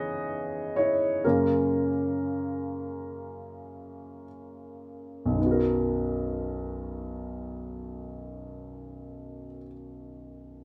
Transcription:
0.00 1.25 C#3 soft
0.00 1.26 E3 soft
0.00 1.26 B3 medium
0.00 1.26 D#4 soft
0.00 0.78 E4 medium
0.00 0.74 G#4 medium
0.00 1.26 B4 medium
0.00 0.76 C#5 medium
0.00 0.72 D#5 medium
0.76 1.22 E4 soft
0.76 1.25 C#5 medium
1.24 1.89 F#2 soft
1.24 1.89 C#3 soft
1.24 1.89 A#3 soft
1.24 4.25 C#4 soft
1.24 4.24 A#4 medium
5.25 9.46 B1 soft
5.31 9.51 F#2 soft
5.36 9.56 D#3 soft
5.41 9.61 B3 soft
5.46 9.66 F#4 soft
5.51 9.71 A#4 soft

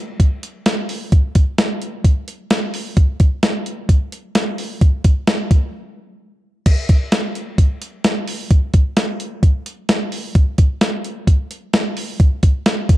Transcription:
0.20 kick medium
0.20 closed hi-hat medium
0.43 closed hi-hat medium
0.66 snare loud
0.66 closed hi-hat medium
0.89 open hi-hat medium
1.12 kick loud
1.12 closed hi-hat medium
1.35 kick medium
1.35 closed hi-hat medium
1.58 snare loud
1.58 closed hi-hat medium
1.82 closed hi-hat medium
2.04 kick medium
2.04 closed hi-hat medium
2.28 closed hi-hat medium
2.50 snare loud
2.50 closed hi-hat medium
2.74 open hi-hat medium
2.97 kick loud
2.97 closed hi-hat medium
3.20 kick medium
3.20 closed hi-hat medium
3.43 snare loud
3.43 closed hi-hat medium
3.66 closed hi-hat medium
3.89 kick medium
3.89 closed hi-hat medium
4.12 closed hi-hat medium
4.35 snare loud
4.35 closed hi-hat medium
4.58 open hi-hat medium
4.81 kick loud
4.81 closed hi-hat medium
5.04 kick medium
5.04 closed hi-hat medium
5.27 snare loud
5.27 closed hi-hat medium
5.51 kick loud
5.51 closed hi-hat medium
6.66 kick loud
6.66 closed hi-hat medium
6.66 crash loud
6.89 kick medium
6.89 closed hi-hat medium
7.12 snare loud
7.12 closed hi-hat medium
7.35 closed hi-hat medium
7.58 kick medium
7.58 closed hi-hat medium
7.82 closed hi-hat medium
8.04 snare loud
8.04 closed hi-hat medium
8.28 open hi-hat medium
8.51 kick loud
8.51 closed hi-hat medium
8.74 kick medium
8.74 closed hi-hat medium
8.97 snare loud
8.97 closed hi-hat medium
9.20 closed hi-hat medium
9.43 kick medium
9.43 closed hi-hat medium
9.66 closed hi-hat medium
9.89 snare loud
9.89 closed hi-hat medium
10.12 open hi-hat medium
10.35 kick loud
10.35 closed hi-hat medium
10.58 kick medium
10.58 closed hi-hat medium
10.81 snare loud
10.81 closed hi-hat medium
11.05 closed hi-hat medium
11.27 kick medium
11.27 closed hi-hat medium
11.51 closed hi-hat medium
11.73 snare loud
11.73 closed hi-hat medium
11.97 open hi-hat medium
12.20 kick loud
12.20 closed hi-hat medium
12.43 kick medium
12.43 closed hi-hat medium
12.66 snare loud
12.66 closed hi-hat medium
12.89 kick loud
12.89 closed hi-hat medium

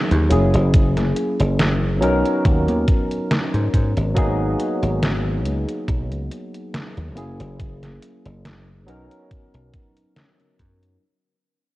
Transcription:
0.00 0.22 F#3 medium
0.00 0.22 A#3 medium
0.00 0.23 B3 medium
0.00 0.23 D#4 medium
0.00 0.23 G#4 loud
0.11 0.33 D#2 medium
0.11 closed hi-hat soft
0.29 0.50 F#1 medium
0.29 1.93 F#3 medium
0.29 1.94 A#3 medium
0.29 1.94 C#4 medium
0.29 1.95 E4 medium
0.29 1.95 G#4 medium
0.29 closed hi-hat medium
0.54 1.12 F#1 medium
0.54 closed hi-hat medium
0.74 kick loud
0.74 closed hi-hat medium
0.97 snare soft
0.97 closed hi-hat soft
1.16 closed hi-hat medium
1.40 2.02 F#1 loud
1.40 closed hi-hat medium
1.59 snare loud
1.59 closed hi-hat medium
2.01 2.22 B1 loud
2.01 4.08 F#3 medium
2.01 4.08 B3 medium
2.01 4.08 C#4 medium
2.01 4.09 D#4 medium
2.01 4.09 A#4 loud
2.01 closed hi-hat medium
2.26 closed hi-hat medium
2.45 2.65 D#2 medium
2.45 kick loud
2.45 closed hi-hat medium
2.68 2.85 D#2 medium
2.68 closed hi-hat soft
2.88 kick loud
2.88 closed hi-hat medium
3.11 closed hi-hat medium
3.31 snare loud
3.31 closed hi-hat medium
3.54 3.71 G#2 medium
3.54 closed hi-hat soft
3.74 3.93 G#2 medium
3.74 kick medium
3.74 closed hi-hat medium
3.97 4.54 G#1 medium
3.97 closed hi-hat medium
4.15 7.08 F#3 medium
4.15 7.08 A#3 medium
4.15 7.09 B3 medium
4.15 7.09 D#4 medium
4.15 7.09 G#4 loud
4.15 kick loud
4.15 closed hi-hat medium
4.60 closed hi-hat medium
4.82 5.45 G#1 loud
4.82 closed hi-hat medium
5.03 snare loud
5.03 closed hi-hat medium
5.45 5.65 C#2 loud
5.45 closed hi-hat medium
5.69 closed hi-hat medium
5.88 6.11 B1 medium
5.88 kick loud
5.88 closed hi-hat medium
6.11 6.28 C#2 medium
6.11 closed hi-hat soft
6.31 closed hi-hat medium
6.54 closed hi-hat medium
6.74 snare loud
6.74 closed hi-hat medium
6.97 7.17 D#2 medium
6.97 closed hi-hat soft
7.15 7.36 F#1 medium
7.15 8.79 F#3 medium
7.15 8.80 A#3 medium
7.15 8.80 C#4 medium
7.15 8.80 E4 medium
7.15 8.81 G#4 medium
7.15 closed hi-hat medium
7.40 7.97 F#1 medium
7.40 closed hi-hat medium
7.60 kick loud
7.60 closed hi-hat medium
7.83 snare soft
7.83 closed hi-hat soft
8.02 closed hi-hat medium
8.26 8.88 F#1 loud
8.26 closed hi-hat medium
8.45 snare loud
8.45 closed hi-hat medium
8.87 9.08 B1 loud
8.87 10.94 F#3 medium
8.87 10.94 B3 medium
8.87 10.94 C#4 medium
8.87 10.95 D#4 medium
8.87 10.95 A#4 loud
8.87 closed hi-hat medium
9.11 closed hi-hat medium
9.31 kick loud
9.31 closed hi-hat medium
9.54 9.71 B1 medium
9.54 closed hi-hat soft
9.74 kick loud
9.74 closed hi-hat medium
9.97 closed hi-hat soft
10.17 snare loud
10.17 closed hi-hat medium
10.40 closed hi-hat soft
10.59 10.96 F#2 medium
10.59 kick medium
10.59 closed hi-hat medium
10.83 closed hi-hat soft

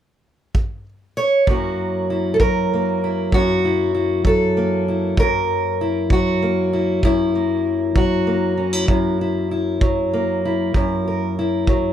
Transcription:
0.55 kick medium
1.17 1.50 C#5 medium
1.47 3.33 F#2 medium
1.47 2.41 F#3 soft
1.47 2.73 A#3 soft
1.47 2.10 E4 soft
1.47 2.33 F#4 soft
1.47 kick medium
2.10 3.03 E4 soft
2.34 2.40 A4 medium
2.40 4.25 F#3 medium
2.40 3.33 A#4 medium
2.40 kick medium
2.74 4.57 A#3 soft
3.04 3.64 E4 soft
3.32 5.18 F#2 medium
3.32 4.26 F#4 medium
3.32 kick medium
3.65 3.94 E4 soft
3.95 4.88 E4 soft
4.25 6.11 F#3 medium
4.25 5.19 A4 medium
4.25 kick medium
4.57 6.42 A#3 soft
4.88 5.21 E4 soft
5.17 7.04 F#2 medium
5.17 6.12 A#4 medium
5.17 kick medium
5.81 6.73 E4 soft
6.10 7.95 F#3 medium
6.10 7.66 F#4 medium
6.10 kick medium
6.43 7.35 A#3 soft
6.73 7.04 E4 soft
7.03 8.88 F#2 medium
7.03 8.57 E4 medium
7.03 kick medium
7.35 8.27 A#3 soft
7.96 9.81 F#3 medium
7.96 10.45 F#4 medium
7.96 kick medium
8.27 10.13 A#3 soft
8.57 8.73 C#4 soft
8.73 8.88 E4 soft
8.88 10.75 F#2 medium
8.88 9.21 E4 soft
8.88 kick medium
9.21 9.51 E4 soft
9.51 10.45 E4 soft
9.81 11.68 F#3 medium
9.81 kick medium
10.13 11.93 A#3 soft
10.45 10.75 E4 soft
10.74 11.93 F#2 medium
10.74 11.37 E4 medium
10.74 kick medium
11.08 11.93 A#4 soft
11.39 11.93 E4 soft
11.67 11.93 F#3 medium
11.67 kick medium

